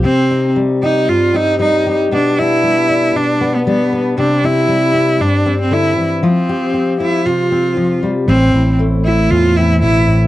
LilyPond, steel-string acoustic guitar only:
\new Staff \with { instrumentName = "Steel-string acoustic guitar" } { \time 4/4 \key c \major \tempo 4 = 117 << { <c' g'>8 ees'4 g'4 c'8 ees'8 g'8 | b8 d'4 d'4 b8 d'8 b'8 | c'8 c'4 c'4 c'4. | f'8 g'4 c'4 c'4. |
c'8 e'4 c'4 c'4. | } \\ { c4 g4 g,4 g4 | b,4 g4 b,4 g4 | c4 g4 g,4 d8 e8 | f4 c'8 r8 c4 f8 g8 |
a,4 a4 e4 b,8 a,8 | } >> }